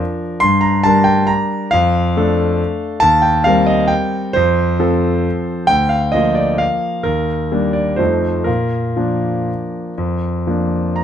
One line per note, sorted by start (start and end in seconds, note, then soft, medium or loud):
0.00 0.39 F3 soft
0.00 0.39 D4 soft
0.00 0.39 A#4 soft
0.00 0.21 G5 medium
0.40 0.83 G2 medium
0.40 0.62 C6 medium
0.61 0.84 A#5 medium
0.83 1.69 G3 soft
0.83 1.69 D4 soft
0.83 1.70 A#4 soft
0.83 1.06 A5 medium
1.04 1.28 G5 medium
1.27 1.72 A#5 medium
1.71 2.14 F2 medium
1.71 3.01 F5 medium
2.17 2.99 A3 soft
2.17 2.99 D4 soft
2.17 2.99 A4 soft
3.00 3.44 D#2 medium
3.00 3.23 A5 loud
3.22 3.45 G5 medium
3.44 4.32 G3 soft
3.44 4.32 C4 soft
3.44 4.32 A#4 soft
3.44 3.67 F5 medium
3.67 3.90 D#5 medium
3.88 4.34 G5 medium
4.33 4.79 F2 medium
4.33 5.68 C5 medium
4.79 5.65 F3 soft
4.79 5.65 C4 soft
4.79 5.65 A4 soft
5.67 6.13 D2 soft
5.67 5.90 G5 medium
5.89 6.13 F5 medium
6.12 7.02 F3 soft
6.12 7.03 A#3 soft
6.12 7.03 F4 soft
6.12 6.36 D#5 medium
6.35 6.60 D5 medium
6.58 7.05 F5 medium
7.03 7.50 D#2 soft
7.03 7.74 A#4 medium
7.52 7.96 G3 soft
7.52 7.96 A#3 soft
7.52 7.96 D4 soft
7.73 7.99 D5 soft
7.96 8.45 F2 soft
7.96 8.43 F3 soft
7.96 8.43 A3 soft
7.96 8.43 D#4 soft
7.96 8.46 C5 medium
8.44 8.95 A#2 soft
8.44 10.95 A#4 soft
8.96 9.93 F3 soft
8.96 9.93 A#3 soft
8.96 9.93 D4 soft
9.98 10.45 F2 soft
10.47 11.04 F3 soft
10.47 11.04 A#3 soft
10.47 11.04 D4 soft
10.96 11.04 A#5 medium